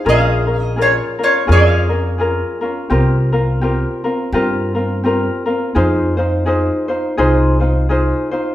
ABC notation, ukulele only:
X:1
M:4/4
L:1/8
Q:"Swing" 1/4=84
K:Fm
V:1 name="Ukulele"
[DFAB] [DFB] [DFAB] [DFB] [DFAB] [DFB] [DFAB] [DFB] | [CFGB] [CFB] [CFGB] [CFB] [CFGB] [CFB] [CFGB] [CFB] | [EFAc] [EFc] [EFAc] [EFc] [EFAc] [EFc] [EFAc] [EFc] |]